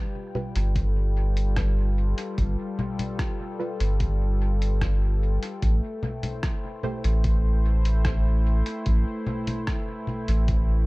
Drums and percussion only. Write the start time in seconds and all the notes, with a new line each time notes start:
0.35 low conga
0.56 closed hi-hat
0.76 kick, closed hi-hat
1.37 closed hi-hat
1.57 kick, cross-stick, closed hi-hat
2.18 closed hi-hat
2.38 kick, closed hi-hat
2.79 low conga
2.99 closed hi-hat, low conga
3.19 kick, cross-stick, closed hi-hat
3.80 closed hi-hat
4.00 kick, closed hi-hat
4.62 closed hi-hat
4.81 kick, cross-stick, closed hi-hat
5.43 closed hi-hat
5.62 kick, closed hi-hat
6.03 low conga
6.23 closed hi-hat, low conga
6.43 kick, cross-stick, closed hi-hat
6.83 low conga
7.04 closed hi-hat
7.24 kick, closed hi-hat
7.85 closed hi-hat
8.05 kick, cross-stick, closed hi-hat
8.66 closed hi-hat
8.86 kick, closed hi-hat
9.27 low conga
9.47 closed hi-hat, low conga
9.67 kick, cross-stick, closed hi-hat
10.07 low conga
10.28 closed hi-hat
10.48 kick, closed hi-hat